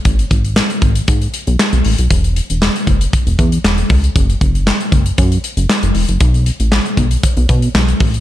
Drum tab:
HH |xxxx-xxxxxxx-xox|xxxx-xxxxxxx-xox|xxxx-xxxxxxx-xox|xxxx-xxxxxxx-xox|
CP |----x-------x---|----x-------x---|----x-------x---|----x-------x---|
SD |----o-------o---|----o-------o---|----o-------o---|----o-------o---|
BD |o-o---o-o-------|o-----o-o-o---o-|o-o---o-o-------|o-----o-o-o---o-|